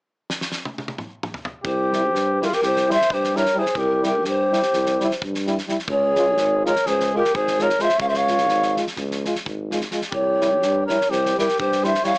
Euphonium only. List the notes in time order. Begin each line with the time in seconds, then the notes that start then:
1.90 G3
2.40 G3
2.88 G3
3.34 G3
3.54 G3
4.02 G3
4.51 G3
4.99 G3
5.46 G3
5.67 G3
6.14 G#3
6.65 G#3
7.13 G#3
7.58 G#3
7.79 G#3
8.27 G#3
8.76 G#3
9.25 G#3
9.71 G#3
9.92 G#3
10.40 G3
10.88 G3
11.37 G3
11.83 G3
12.04 G3